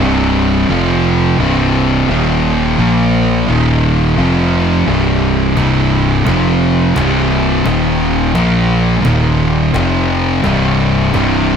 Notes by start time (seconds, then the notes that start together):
0.00 C1 C2 G2 C3
0.69 F1 F2 C3 F3
1.39 C1 C2 G2 C3
2.08 D#1 D#2 A#2 D#3
2.78 A#1 A#2 F3 A#3
3.48 D#1 D#2 A#2 D#3
4.17 F1 F2 C3 F3
4.87 C1 C2 G2 C3
5.56 C1 C2 G2 C3, cajon bass
6.02 cajon slap
6.26 F1 F2 C3 F3, cajon bass
6.72 cajon slap
6.95 C1 C2 G2 C3, cajon bass, cajon slap
7.41 cajon slap
7.65 D#1 D#2 A#2 D#3, cajon bass
8.11 cajon slap
8.34 A#1 A#2 F3 A#3, cajon bass
8.81 cajon slap
9.04 D#1 D#2 A#2 D#3, cajon bass
9.50 cajon slap
9.74 F1 F2 C3 F3, cajon bass, cajon slap
10.19 cajon slap
10.43 C1 C2 G2 C3, cajon bass, cajon slap
10.89 cajon slap
11.13 C1 C2 G2 C3, cajon bass